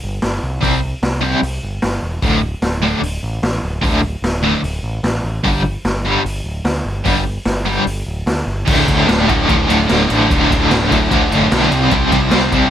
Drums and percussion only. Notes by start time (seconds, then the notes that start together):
0.22 snare, open hi-hat
0.63 kick, open hi-hat
1.03 snare, open hi-hat
1.43 open hi-hat
1.82 snare, open hi-hat
2.22 kick, open hi-hat
2.62 snare, open hi-hat
3.03 open hi-hat
3.43 snare, open hi-hat
3.84 kick, open hi-hat
4.24 snare, open hi-hat
4.64 open hi-hat
5.04 snare, open hi-hat
5.45 kick, open hi-hat
5.85 snare, open hi-hat
6.26 open hi-hat
6.65 snare, open hi-hat
7.05 kick, open hi-hat
7.46 snare, open hi-hat
7.87 open hi-hat
8.27 snare, open hi-hat
8.67 kick, crash
8.88 kick, ride
9.09 snare, ride
9.29 kick, ride
9.49 kick, ride
9.70 ride
9.89 snare, ride
10.10 ride
10.30 kick, ride
10.51 kick, ride
10.71 snare, ride
10.91 kick, ride
11.11 kick, ride
11.32 ride
11.52 snare, ride
11.72 ride
11.91 kick, ride
12.12 kick, ride
12.31 snare, ride
12.52 kick, ride